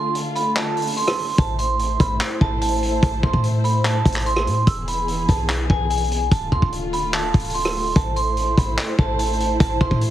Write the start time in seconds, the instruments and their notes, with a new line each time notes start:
Already playing: string section D3 A3 F4, vibraphone C6
0.15 closed hi-hat
0.36 vibraphone B5, closed hi-hat
0.56 vibraphone A5, clap, closed hi-hat
0.77 closed hi-hat
0.82 closed hi-hat
0.87 closed hi-hat
0.92 closed hi-hat
0.97 vibraphone C6, closed hi-hat
1.02 closed hi-hat
1.07 cross-stick, closed hi-hat
1.13 closed hi-hat
1.18 open hi-hat
1.38 808-style bass A1, string section A3 E4 C5, vibraphone A5, kick, closed hi-hat
1.59 vibraphone C6, closed hi-hat
1.79 closed hi-hat
2.00 808-style bass A1, vibraphone B5, kick, closed hi-hat
2.21 clap, closed hi-hat
2.41 808-style bass A1, vibraphone A5, kick
2.62 vibraphone A5, closed hi-hat
2.68 closed hi-hat
2.75 closed hi-hat
2.83 closed hi-hat
3.03 808-style bass A1, vibraphone A5, kick, closed hi-hat
3.23 808-style bass A1, vibraphone C6, kick
3.33 808-style bass A2, kick
3.44 closed hi-hat
3.64 vibraphone B5, closed hi-hat
3.85 vibraphone A5, clap, closed hi-hat
4.05 808-style bass A1, kick, closed hi-hat
4.12 clap, closed hi-hat
4.19 closed hi-hat
4.26 vibraphone C6, closed hi-hat
4.36 cross-stick
4.47 808-style bass A2, closed hi-hat
4.67 808-style bass E1, string section E3 B3 G#4, vibraphone E6, kick, closed hi-hat
4.88 vibraphone B5, closed hi-hat
5.08 closed hi-hat
5.29 808-style bass B1, vibraphone A5, kick, closed hi-hat
5.49 clap, closed hi-hat
5.70 808-style bass B1, vibraphone G#5, kick
5.90 vibraphone G#5, closed hi-hat
5.97 closed hi-hat
6.04 closed hi-hat
6.12 closed hi-hat
6.31 808-style bass D1, string section D3 A3 F4, vibraphone A5, kick, closed hi-hat
6.52 808-style bass D2, vibraphone C6, kick
6.62 808-style bass D1, kick
6.72 closed hi-hat
6.93 vibraphone B5, closed hi-hat
7.14 vibraphone A5, clap, closed hi-hat
7.34 808-style bass D1, kick, closed hi-hat
7.39 closed hi-hat
7.45 closed hi-hat
7.50 closed hi-hat
7.55 vibraphone C6, closed hi-hat
7.60 closed hi-hat
7.65 cross-stick, closed hi-hat
7.70 closed hi-hat
7.76 open hi-hat
7.96 808-style bass A1, string section E4 C5, vibraphone A5, kick, closed hi-hat
8.16 vibraphone C6, closed hi-hat
8.37 closed hi-hat
8.58 808-style bass A1, vibraphone B5, kick, closed hi-hat
8.78 clap, closed hi-hat
8.99 808-style bass A1, vibraphone A5, kick
9.19 vibraphone A5, closed hi-hat
9.26 closed hi-hat
9.33 closed hi-hat
9.40 closed hi-hat
9.60 808-style bass A1, vibraphone A5, kick, closed hi-hat
9.81 808-style bass A1, vibraphone C6, kick
9.91 808-style bass A2, kick
10.01 closed hi-hat